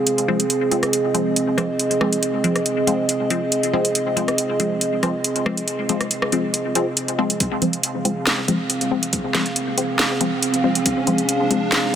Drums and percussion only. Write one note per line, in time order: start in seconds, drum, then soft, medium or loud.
0.07 closed hi-hat medium
0.18 closed hi-hat soft
0.40 closed hi-hat medium
0.50 closed hi-hat medium
0.71 closed hi-hat soft
0.83 cross-stick soft
0.83 closed hi-hat soft
0.93 closed hi-hat medium
1.15 closed hi-hat soft
1.36 closed hi-hat medium
1.58 cross-stick medium
1.58 closed hi-hat soft
1.79 closed hi-hat medium
1.91 closed hi-hat soft
2.01 cross-stick medium
2.13 closed hi-hat medium
2.23 closed hi-hat medium
2.44 closed hi-hat soft
2.56 cross-stick soft
2.56 closed hi-hat soft
2.66 closed hi-hat medium
2.87 closed hi-hat soft
3.09 closed hi-hat medium
3.30 closed hi-hat soft
3.52 closed hi-hat medium
3.63 closed hi-hat soft
3.85 closed hi-hat medium
3.95 closed hi-hat medium
4.17 closed hi-hat soft
4.28 cross-stick medium
4.28 closed hi-hat soft
4.38 closed hi-hat medium
4.60 closed hi-hat medium
4.81 closed hi-hat medium
5.03 cross-stick medium
5.03 closed hi-hat medium
5.24 closed hi-hat medium
5.36 closed hi-hat soft
5.46 cross-stick medium
5.57 closed hi-hat medium
5.68 closed hi-hat medium
5.89 closed hi-hat medium
6.01 cross-stick soft
6.01 closed hi-hat soft
6.11 closed hi-hat medium
6.22 cross-stick medium
6.32 closed hi-hat medium
6.54 closed hi-hat medium
6.75 closed hi-hat medium
6.97 closed hi-hat medium
7.08 closed hi-hat soft
7.30 closed hi-hat medium
7.40 kick loud
7.40 closed hi-hat medium
7.62 closed hi-hat medium
7.73 closed hi-hat soft
7.83 closed hi-hat medium
8.05 closed hi-hat medium
8.27 snare loud
8.27 closed hi-hat medium
8.48 closed hi-hat medium
8.70 closed hi-hat medium
8.81 closed hi-hat soft
9.03 closed hi-hat medium
9.13 kick loud
9.13 closed hi-hat medium
9.35 snare medium
9.35 closed hi-hat medium
9.46 closed hi-hat soft
9.56 closed hi-hat medium
9.78 closed hi-hat medium
9.99 snare loud
9.99 closed hi-hat medium
10.21 closed hi-hat medium
10.43 closed hi-hat medium
10.54 closed hi-hat soft
10.75 closed hi-hat medium
10.86 kick loud
10.86 closed hi-hat medium
11.07 closed hi-hat medium
11.18 closed hi-hat soft
11.29 closed hi-hat medium
11.51 closed hi-hat medium
11.72 snare loud
11.72 closed hi-hat medium